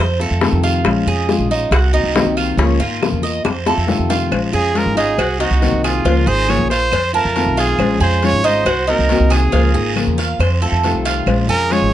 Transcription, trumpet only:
4.54 4.79 G#4 loud
4.77 4.98 A#4 loud
4.98 5.43 G#4 medium
5.41 5.84 F#4 medium
5.84 6.29 F4 medium
6.28 6.51 C5 loud
6.50 6.69 C#5 medium
6.70 7.11 C5 loud
7.15 7.55 A#4 medium
7.59 8.02 G#4 medium
8.02 8.27 C5 medium
8.25 8.47 C#5 loud
8.46 8.91 C5 medium
8.90 9.32 A#4 medium
9.34 9.94 G#4 medium
11.50 11.74 A#4 loud
11.72 11.93 C#5 loud

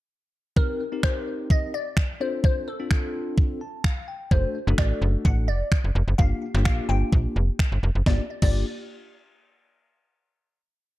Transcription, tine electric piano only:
0.56 0.82 C4 medium
0.56 0.82 D#4 medium
0.56 0.82 G4 medium
0.56 0.82 A#4 medium
0.92 1.00 C4 medium
0.92 1.00 D#4 medium
0.92 1.00 G4 medium
0.92 1.00 A#4 medium
1.03 1.72 C4 medium
1.03 1.72 D#4 medium
1.03 1.72 G4 medium
1.03 1.72 A#4 medium
2.20 2.67 C4 medium
2.20 2.67 D4 medium
2.20 2.67 F4 medium
2.20 2.68 A4 medium
2.79 2.88 C4 medium
2.79 2.88 D4 medium
2.79 2.88 F4 medium
2.79 2.88 A4 medium
2.91 3.59 C4 medium
2.91 3.59 D4 medium
2.91 3.59 A4 medium
3.61 3.83 A5 medium
3.84 4.06 F5 medium
4.08 4.30 G5 medium
4.31 4.57 A3 medium
4.31 4.57 D4 medium
4.31 4.57 F#4 medium
4.31 4.57 A4 medium
4.67 4.75 A3 medium
4.67 4.75 D4 medium
4.67 4.75 F#4 medium
4.67 4.75 A4 medium
4.78 5.47 A3 medium
4.78 5.47 D4 medium
4.78 5.47 F#4 medium
4.78 5.47 A4 medium
6.19 6.45 A#3 medium
6.19 6.45 D4 medium
6.19 6.45 F4 medium
6.19 6.45 G4 medium
6.54 6.63 A#3 medium
6.54 6.63 D4 medium
6.54 6.63 F4 medium
6.54 6.63 G4 medium
6.65 7.34 A#3 medium
6.65 7.34 D4 medium
6.65 7.34 F4 medium
6.65 7.34 G4 medium
8.07 8.20 A#3 medium
8.07 8.20 D4 medium
8.07 8.20 F4 medium
8.07 8.20 G4 medium
8.43 8.64 A#3 medium
8.43 8.64 D4 medium
8.43 8.64 F4 medium
8.43 8.64 G4 medium

